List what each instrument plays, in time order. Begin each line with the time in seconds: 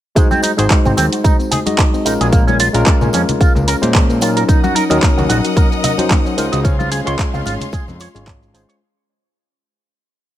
0.15 tine electric piano G#3 D#4 F#4 C5, clean electric guitar G#3, synth arpeggio sound G#3, kick, closed hi-hat, tambourine, shaker
0.31 clean electric guitar C4, synth arpeggio sound C4, tambourine, high conga, shaker
0.43 clean electric guitar D#4, synth arpeggio sound D#4, open hi-hat, tambourine, shaker
0.57 analog synth bass G#1, tine electric piano G#3 D#4 F#4 C5, synth arpeggio sound F#4, clean electric guitar G#4, closed hi-hat, tambourine, shaker
0.70 synth arpeggio sound G#3, kick, clap, closed hi-hat, tambourine, shaker
0.85 analog synth bass G#1, clean electric guitar C4, synth arpeggio sound C4, tambourine, low conga, shaker
0.97 analog synth bass D#2, clean electric guitar C4, synth arpeggio sound D#4, open hi-hat, tambourine, high conga, shaker
1.12 synth arpeggio sound F#4, closed hi-hat, tambourine, shaker
1.24 synth arpeggio sound G#3, clean electric guitar D#4, kick, closed hi-hat, tambourine, shaker
1.39 synth arpeggio sound C4, tambourine, shaker
1.51 synth arpeggio sound D#4, clean electric guitar G#4, open hi-hat, tambourine, low conga, shaker
1.66 tine electric piano G#3 D#4 F#4 D#5, synth arpeggio sound F#4, closed hi-hat, tambourine, high conga, shaker
1.78 synth arpeggio sound G#3, kick, clap, closed hi-hat, tambourine, shaker
1.93 synth arpeggio sound C4, tambourine, shaker
2.05 analog synth bass A#1, tine electric piano G#3 C#4 F4 A#4, clean electric guitar D#4, synth arpeggio sound D#4, open hi-hat, tambourine, shaker
2.21 analog synth bass A#1, synth arpeggio sound F#4, clean electric guitar G#4, closed hi-hat, tambourine, shaker
2.32 synth arpeggio sound G#3, clean electric guitar A#3, kick, closed hi-hat, tambourine, shaker
2.47 synth arpeggio sound A#3, clean electric guitar C#4, tambourine, high conga, shaker
2.59 synth arpeggio sound C#4, clean electric guitar F4, open hi-hat, tambourine, shaker
2.73 analog synth bass A#1, tine electric piano G#3 C#4 F4 A#4, synth arpeggio sound F4, clean electric guitar A#4, closed hi-hat, tambourine, shaker
2.86 synth arpeggio sound G#3, kick, clap, closed hi-hat, tambourine, shaker
3.01 analog synth bass A#1, synth arpeggio sound A#3, clean electric guitar C#4, tambourine, low conga, shaker
3.13 analog synth bass F2, clean electric guitar C#4, synth arpeggio sound C#4, open hi-hat, tambourine, high conga, shaker
3.28 synth arpeggio sound F4, closed hi-hat, tambourine, low conga, shaker
3.41 synth arpeggio sound G#3, clean electric guitar F4, kick, closed hi-hat, tambourine, shaker
3.55 analog synth bass C#2, synth arpeggio sound A#3, tambourine, low conga, shaker
3.67 synth arpeggio sound C#4, clean electric guitar A#4, open hi-hat, tambourine, shaker
3.81 analog synth bass A#2, tine electric piano G#3 C#4 F4 C5, synth arpeggio sound F4, closed hi-hat, tambourine, high conga, shaker
3.95 synth arpeggio sound G#3, kick, clap, closed hi-hat, tambourine, shaker
4.10 synth arpeggio sound A#3, tambourine, shaker
4.20 tine electric piano F#3 C#4 D#4 A#4, synth arpeggio sound C#4, clean electric guitar F4, open hi-hat, tambourine, shaker
4.37 synth arpeggio sound F4, clean electric guitar A#4, closed hi-hat, tambourine, shaker
4.48 synth arpeggio sound A#3, clean electric guitar D#4, string section A#4 D#5 F#5 D#6, kick, closed hi-hat, tambourine, shaker
4.64 synth arpeggio sound C#4, clean electric guitar F#4, tambourine, high conga, shaker
4.75 synth arpeggio sound D#4, clean electric guitar A#4, open hi-hat, tambourine, shaker
4.90 analog synth bass D#2, tine electric piano F#3 C#4 D#4 A#4, synth arpeggio sound F#4, clean electric guitar D#5, closed hi-hat, tambourine, shaker
5.03 synth arpeggio sound A#3, kick, clap, closed hi-hat, tambourine, shaker
5.17 analog synth bass D#2, synth arpeggio sound C#4, clean electric guitar F#4, tambourine, low conga, shaker
5.29 analog synth bass A#1, synth arpeggio sound D#4, clean electric guitar F#4, open hi-hat, tambourine, high conga, shaker
5.45 synth arpeggio sound F#4, closed hi-hat, tambourine, shaker
5.56 synth arpeggio sound A#3, clean electric guitar A#4, kick, closed hi-hat, tambourine, shaker
5.72 synth arpeggio sound C#4, tambourine, shaker
5.84 synth arpeggio sound D#4, clean electric guitar D#5, open hi-hat, tambourine, low conga, shaker
5.98 tine electric piano F#3 C#4 D#4 C5, synth arpeggio sound F#4, closed hi-hat, tambourine, high conga, shaker
6.11 synth arpeggio sound A#3, kick, clap, closed hi-hat, tambourine, shaker
6.26 synth arpeggio sound C#4, tambourine, shaker
6.37 analog synth bass C#2, tine electric piano G#3 C#4 F4 C5, synth arpeggio sound D#4, clean electric guitar A#4, open hi-hat, tambourine, shaker
6.52 analog synth bass C#2, synth arpeggio sound F#4, clean electric guitar D#5, closed hi-hat, tambourine, shaker
6.64 string section C#4 G#4 F5 C6, clean electric guitar C#4, kick, closed hi-hat, tambourine, shaker
6.79 synth arpeggio sound C4, clean electric guitar F4, tambourine, high conga, shaker
6.91 synth arpeggio sound C#4, clean electric guitar G#4, open hi-hat, tambourine, shaker
7.05 analog synth bass C#2, tine electric piano G#3 C#4 F4 C6, synth arpeggio sound F4, clean electric guitar C#5, closed hi-hat, tambourine, shaker
7.19 synth arpeggio sound G#3, kick, clap, closed hi-hat, tambourine, shaker
7.34 analog synth bass C#2, synth arpeggio sound C4, clean electric guitar F4, tambourine, low conga, shaker
7.46 analog synth bass G#1, synth arpeggio sound C#4, clean electric guitar F4, open hi-hat, tambourine, high conga, shaker
7.61 synth arpeggio sound F4, closed hi-hat, tambourine, low conga, shaker
7.72 synth arpeggio sound G#3, clean electric guitar G#4, kick, closed hi-hat, tambourine, shaker
7.88 analog synth bass F2, synth arpeggio sound C4, tambourine, low conga, shaker
8.00 synth arpeggio sound F4, clean electric guitar C#5, open hi-hat, tambourine, shaker
8.14 analog synth bass G#1, tine electric piano G#3 C#4 F4 C#5, synth arpeggio sound G#3, closed hi-hat, tambourine, high conga, shaker
8.27 synth arpeggio sound C#4, kick, clap, closed hi-hat, tambourine, shaker
8.42 synth arpeggio sound G#4, tambourine, shaker
8.53 analog synth bass G#1, tine electric piano G#3 C#4 F4 C5, synth arpeggio sound G#3, clean electric guitar G#4, open hi-hat, tambourine, shaker
8.69 synth arpeggio sound C#4, clean electric guitar C#5, closed hi-hat, tambourine, shaker